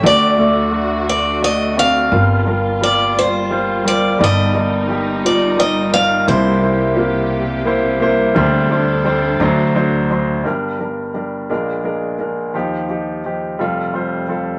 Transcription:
Already playing: felt piano G3, string section A3
0.02 upright bass D2, grand piano D2 D3 A3 F#4 D5, string section D3 F#4, steel-string acoustic guitar D5
0.37 grand piano A3 F#4 A4, felt piano A3
0.72 grand piano A3 F#4 A4
1.09 steel-string acoustic guitar D5
1.41 grand piano A3 F#4 D5, steel-string acoustic guitar D#5
1.76 grand piano A3 F#4 D5, felt piano C4, steel-string acoustic guitar F5
2.12 upright bass G1, grand piano G1 G2 G3 F4 A#4, string section G3 A#3 F4
2.46 grand piano G3 F4 A#4
2.81 grand piano G3 F4 A#4, steel-string acoustic guitar D5
3.19 steel-string acoustic guitar C5
3.51 grand piano G3 F4 C5
3.85 grand piano G3 F4 A#4, steel-string acoustic guitar D5
4.19 grand piano G1 G2 G3 D#4 D5, upright bass G1, string section D#4
4.24 steel-string acoustic guitar D#5
4.54 grand piano G3 D#4 D5
4.88 grand piano G3 D#4 G4
5.24 felt piano F4, steel-string acoustic guitar D5
5.57 grand piano G3 D#4 D5, felt piano D#4, steel-string acoustic guitar D#5
5.92 grand piano G3 D#4 D5, steel-string acoustic guitar F5
6.27 upright bass C2, grand piano C2 C3 A#3 E4 C5, string section C3 G4, steel-string acoustic guitar C5
6.61 grand piano A#3 E4 C5
6.96 grand piano A#3 E4 A#4, felt piano E4
7.66 grand piano A#3 E4 C5
8.00 grand piano A#3 E4 C5, felt piano A#3
8.35 grand piano D2 D3 G3 D4 C5, upright bass D2, string section D4 A4
8.70 grand piano G3 D4 C5
9.05 grand piano G3 D4 C5
9.40 upright bass D2, grand piano D2 D3 F#3 D4 C5, string section F#3
9.75 grand piano F#3 D4 C5
10.10 grand piano F#3 D4 C5
10.44 grand piano G1 G2 G3 D4 A#4
10.79 grand piano G3 D4 A#4
11.14 grand piano G3 D4 A#4
11.50 grand piano A#1 A#2 G#3 D4 A#4
11.84 grand piano G#3 D4 A#4
12.19 grand piano G#3 D4 A#4
12.54 grand piano D#2 F3 D#4 G4
12.89 grand piano F3 D#4 G4
13.24 grand piano F3 D#4 G4
13.59 grand piano F1 F2 G3 F4 A4
13.94 grand piano G3 F4 C5
14.28 grand piano G3 F4 A4

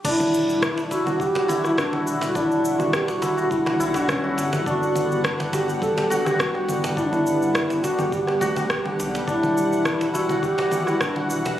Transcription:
0.05 analog synth bass E1, analog synth pad D3 G3 E4 F#5, santur D4, duduk E4, kick, crash, shaker
0.20 low conga, shaker
0.34 shaker
0.50 shaker
0.62 kick, cross-stick, low conga, shaker
0.78 cajon slap, shaker
0.91 santur E4, duduk F#4, cajon bass, shaker
1.06 santur F#4, low conga, shaker
1.20 analog synth bass D1, duduk G4, kick, shaker
1.35 santur F#4, cajon bass, cajon slap
1.48 santur E4, cajon slap, low conga, shaker
1.64 duduk E4, santur F#4, cross-stick, shaker
1.78 duduk D4, kick, cross-stick, shaker
1.93 santur F#4, cajon slap, low conga
2.07 analog synth bass E1, shaker
2.21 cajon bass, cajon slap, shaker
2.30 duduk F#4
2.35 santur D4, duduk E4, kick, low conga, shaker
2.52 shaker
2.65 shaker
2.80 duduk F#4, low conga, shaker
2.93 duduk G4, kick, cross-stick, shaker
3.08 duduk F#4, cajon slap, shaker
3.22 santur E4, cajon bass, low conga, shaker
3.37 analog synth bass E1, santur F#4, shaker
3.51 duduk E4, kick, shaker
3.66 santur F#4, cross-stick, cajon slap, low conga
3.80 analog synth bass B1, santur E4, shaker
3.94 duduk D4, santur F#4, cajon bass, shaker
4.09 duduk C#4, kick, cross-stick, low conga, shaker
4.24 santur F#4
4.38 analog synth bass G1, cajon slap, shaker
4.53 cajon slap, low conga, shaker
4.66 analog synth bass G1, analog synth pad B3, santur D4, duduk F#4, kick, shaker
4.83 shaker
4.96 low conga, shaker
5.12 shaker
5.24 kick, cross-stick, shaker
5.40 cajon slap, low conga, shaker
5.53 santur F#4, duduk G4, cajon bass, shaker
5.68 santur G4, shaker
5.82 analog synth bass D1, duduk A4, kick, low conga, shaker
5.97 santur G4, cajon bass, cajon slap
6.10 santur F#4, cajon slap, shaker
6.26 santur G4, duduk G4, cross-stick, low conga, shaker
6.39 duduk F#4, kick, cross-stick, shaker
6.54 santur G4, cajon slap
6.68 analog synth bass G1, low conga, shaker
6.84 cajon bass, cajon slap, shaker
6.97 santur D4, duduk E4, kick, shaker
7.04 duduk D4
7.12 duduk E4, low conga, shaker
7.27 shaker
7.42 shaker
7.55 kick, cross-stick, low conga, shaker
7.70 cajon slap, shaker
7.83 santur F#4, duduk F#4, cajon bass, shaker
7.98 analog synth bass G1, santur G4, low conga, shaker
8.12 duduk G4, kick, shaker
8.27 santur G4, cross-stick, cajon slap
8.41 analog synth bass D2, santur F#4, low conga, shaker
8.56 santur G4, cajon bass, shaker
8.70 analog synth bass D1, kick, cross-stick, shaker
8.85 santur G4, low conga
8.99 analog synth bass B1, cajon slap, shaker
9.15 cajon slap, shaker
9.27 analog synth bass E1, analog synth pad E3 F#5, santur D4, duduk E4, kick, shaker
9.43 low conga, shaker
9.57 shaker
9.73 shaker
9.85 kick, cross-stick, low conga, shaker
10.01 cajon slap, shaker
10.14 santur E4, duduk F#4, cajon bass, shaker
10.29 santur F#4, low conga, shaker
10.43 analog synth bass D1, duduk G4, kick, shaker
10.58 santur F#4, cajon bass, cajon slap
10.71 santur G4, cajon slap, low conga, shaker
10.87 duduk E4, santur F#4, cross-stick, shaker
11.01 duduk D4, kick, cross-stick, shaker
11.16 santur F#4, cajon slap, low conga
11.30 analog synth bass E1, shaker
11.45 cajon bass, cajon slap, shaker

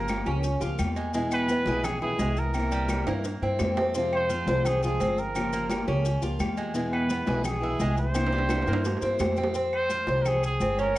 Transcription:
Already playing: upright bass G1, cuban tres A#3, trumpet A#4
0.08 nylon-string guitar F3 A#3 F4 G4, high conga, low agogo, claves, maracas
0.26 upright bass C#2, nylon-string guitar F3 A#3 F4 G4, cuban tres C#4, high conga, maracas
0.43 muted nylon-string guitar stroke, high conga, low agogo, maracas
0.60 upright bass C#2, nylon-string guitar F3 A#3 F4 G4, cuban tres F4, high conga, maracas
0.79 upright bass E2, nylon-string guitar A#3 F4 G4, high conga, low agogo, claves, maracas
0.96 cuban tres G#3, high conga, low agogo, maracas
1.14 nylon-string guitar B2 E3 G#3 B3 E4, cuban tres G#3, high conga, maracas
1.31 trumpet B4, high conga, low agogo, claves, maracas
1.48 nylon-string guitar E3 G#3 B3 E4, cuban tres B3, high conga, low agogo, maracas
1.66 upright bass B1, nylon-string guitar E3 G#3 B3 E4, cuban tres G#4, high conga, maracas
1.84 trumpet G#4, muted nylon-string guitar stroke, high conga, low conga, low agogo, claves, maracas
2.01 nylon-string guitar E3 G#3 B3 E4, cuban tres E4, trumpet G#4, high conga, low conga
2.18 upright bass C2, nylon-string guitar E3 G#3 B3 E4, cuban tres G#3, high conga, low timbale, low agogo, maracas
2.37 trumpet A#4, maracas
2.54 nylon-string guitar C3 E3 A#3 C4 E4, high conga, low agogo, claves, maracas
2.71 cuban tres G3, high conga, maracas
2.88 nylon-string guitar E3 A#3 C4 E4, high conga, low agogo, claves, maracas
3.06 upright bass G2, nylon-string guitar E3 A#3 C4 E4, cuban tres A#3, high conga, high timbale, maracas
3.24 muted nylon-string guitar stroke, high conga, high timbale, low agogo, maracas
3.42 upright bass G2, nylon-string guitar E3 A#3 C4 E4, cuban tres C4, high conga
3.59 upright bass F2, nylon-string guitar E3 A#3 C4 E4, high conga, low timbale, low agogo, claves, maracas
3.77 cuban tres C4, high conga, low timbale, low agogo, maracas
3.95 nylon-string guitar C3 F3 G#3 C4 F4, cuban tres C4, maracas
4.12 trumpet C5, high conga, low agogo, claves
4.30 nylon-string guitar F3 G#3 C4 F4, cuban tres F4, high conga, low agogo, maracas
4.47 upright bass C2, nylon-string guitar F3 G#3 C4 F4, cuban tres C5, high conga, maracas
4.65 trumpet G#4, muted nylon-string guitar stroke, high conga, low conga, low agogo, claves, maracas
4.82 nylon-string guitar F3 G#3 C4 F4, cuban tres G#4, trumpet G#4, high conga, maracas
5.00 upright bass G1, nylon-string guitar F3 C4 F4, cuban tres C4, high conga, low agogo, maracas
5.18 trumpet A#4, maracas
5.35 nylon-string guitar C#3 F3 A#3 F4 G4, high conga, low agogo, claves, maracas
5.53 cuban tres A#3, maracas
5.69 nylon-string guitar F3 A#3 F4 G4, high conga, low agogo, claves, maracas
5.87 upright bass C#2, nylon-string guitar F3 A#3 F4 G4, cuban tres C#4, high conga, maracas
6.05 muted nylon-string guitar stroke, high conga, low agogo, maracas
6.22 upright bass C#2, nylon-string guitar F3 A#3 F4 G4, cuban tres F4, high conga, maracas
6.40 upright bass E2, nylon-string guitar A#3 F4 G4, high conga, low agogo, claves, maracas
6.57 cuban tres G#3, high conga, low agogo, maracas
6.74 nylon-string guitar B2 E3 G#3 B3 E4, cuban tres G#3, high conga, maracas
6.93 trumpet B4, high conga, low agogo, claves
7.08 nylon-string guitar E3 G#3 B3 E4, cuban tres B3, high conga, low agogo, maracas
7.26 upright bass B1, nylon-string guitar E3 G#3 B3 E4, cuban tres G#4, high conga, maracas
7.44 trumpet G#4, muted nylon-string guitar stroke, high conga, low conga, low agogo, claves, maracas
7.61 nylon-string guitar E3 G#3 B3 E4, cuban tres E4, high conga
7.79 upright bass C2, nylon-string guitar E3 G#3 B3 E4, cuban tres G#3, high conga, low agogo, maracas
7.97 trumpet C5, high conga, maracas
8.13 nylon-string guitar C3 E3 A#3 C4 E4, high conga, high timbale, low agogo, claves, maracas
8.27 high timbale
8.32 cuban tres G3, high conga
8.38 high timbale
8.49 nylon-string guitar E3 A#3 C4 E4, high conga, high timbale, low agogo, claves, maracas
8.62 high timbale
8.66 upright bass G2, nylon-string guitar E3 A#3 C4 E4, cuban tres A#3, high conga, maracas
8.73 high timbale
8.85 muted nylon-string guitar stroke, high conga, low timbale, low agogo, maracas
8.97 low timbale
9.02 upright bass G2, nylon-string guitar E3 A#3 C4 E4, cuban tres C4, high conga, maracas
9.19 upright bass F2, nylon-string guitar E3 A#3 C4 E4, high conga, low timbale, low agogo, claves, maracas
9.32 low timbale
9.37 cuban tres C4, high conga, low agogo, maracas
9.44 low timbale
9.55 cuban tres C4, high conga, maracas
9.72 trumpet C5, high conga, low agogo, claves
9.90 cuban tres F4, high conga, low agogo, maracas
10.07 upright bass C2, cuban tres C5, high conga, maracas
10.22 trumpet A#4, high conga, low conga, low agogo, claves, maracas
10.28 trumpet G#4
10.43 cuban tres G#4, trumpet G#4, high conga, maracas
10.60 upright bass G1, cuban tres C4, high conga, low agogo, maracas
10.78 cuban tres C#4, trumpet A#4, high conga, maracas

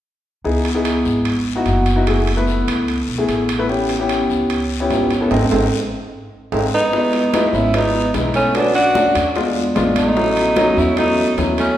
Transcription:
0.44 upright bass C#2, grand piano B3 D#4 E4 G#4, long guiro
0.65 high timbale
0.75 grand piano B3 D#4 E4 G#4
0.85 high timbale, short guiro
1.05 upright bass G#1, short guiro
1.25 high timbale, long guiro
1.56 grand piano B3 D#4 E4 F#4
1.66 upright bass F#1, high timbale, short guiro
1.86 high timbale, short guiro
1.96 grand piano B3 D#4 E4 F#4
2.07 grand piano A3 B3 E4 G#4, high timbale, long guiro
2.27 high timbale
2.37 grand piano A3 B3 E4 B4
2.47 short guiro
2.67 upright bass C#2, high timbale, short guiro
2.88 high timbale, long guiro
3.08 upright bass B1
3.18 grand piano A3 B3 E4 G#4
3.28 upright bass A1, high timbale, short guiro
3.49 high timbale, short guiro
3.59 grand piano A3 B3 E4 B4
3.69 grand piano B3 C#4 E4 G4, long guiro
3.89 high timbale
3.99 grand piano B3 C#4 E4 G4
4.09 high timbale, short guiro
4.29 upright bass C#2, short guiro
4.50 high timbale, long guiro
4.80 grand piano B3 C#4 E4 G4
4.90 upright bass G#1, high timbale, low timbale, short guiro
5.11 high timbale, short guiro
5.21 grand piano B3 C#4 E4 A4
5.31 upright bass G#1, grand piano G#3 C4 D#4, high timbale, long guiro
5.51 upright bass G#1, grand piano G#3 C4 D#4, high timbale, long guiro
6.52 upright bass G#1, grand piano G#3 C4 D#4, high timbale, long guiro
6.74 tenor saxophone B3, alto saxophone D#4
6.93 grand piano G#3 B3 D#4 E4, high bongo, high conga, long guiro
7.13 high bongo, high conga, high timbale
7.33 grand piano G#3 B3 D#4 E4, high bongo, high conga, high timbale, short guiro
7.49 upright bass G#1, tenor saxophone B3, alto saxophone D#4
7.54 tenor saxophone C#4, alto saxophone E4, high conga, short guiro
7.74 grand piano G#3 B3 D#4 E4, tenor saxophone B3, alto saxophone D#4, high bongo, high conga, high timbale, long guiro
7.94 high bongo, high conga
8.14 upright bass B1, grand piano G#3 B3 D#4 E4, high bongo, low bongo, high conga, high timbale, short guiro
8.34 tenor saxophone A3, alto saxophone C#4, high conga, high timbale, short guiro
8.55 grand piano A3 C#4 D4 F#4, tenor saxophone B3, alto saxophone D4, high bongo, high conga, high timbale, long guiro
8.75 tenor saxophone D4, alto saxophone F#4, high bongo, high conga, high timbale
8.95 grand piano A3 C#4 D4 F#4, high bongo, high conga, short guiro
9.15 upright bass E2, high conga, high timbale, short guiro
9.36 grand piano G#3 B3 D4 F4, high bongo, high conga, high timbale, long guiro
9.56 high bongo, high conga
9.75 upright bass A1, grand piano G#3 B3 D4 F4, high bongo, low bongo, high conga, high timbale, short guiro
9.96 tenor saxophone A3, alto saxophone D#4, high conga, high timbale, short guiro
10.16 grand piano F#3 B3 C#4 E4, high bongo, high conga, long guiro
10.36 high bongo, high conga, high timbale
10.56 grand piano F#3 B3 C#4 D#4, high bongo, high conga, high timbale, short guiro
10.77 upright bass E2, tenor saxophone C#4, alto saxophone E4, high conga, short guiro
10.97 grand piano F#3 B3 C#4 E4, tenor saxophone A3, alto saxophone D#4, high bongo, high conga, high timbale, long guiro
11.18 high bongo, high conga
11.37 upright bass D#2, grand piano F#3 B3 C#4 E4, high bongo, low bongo, high conga, high timbale, short guiro
11.58 tenor saxophone A3, alto saxophone C#4, high conga, high timbale, short guiro

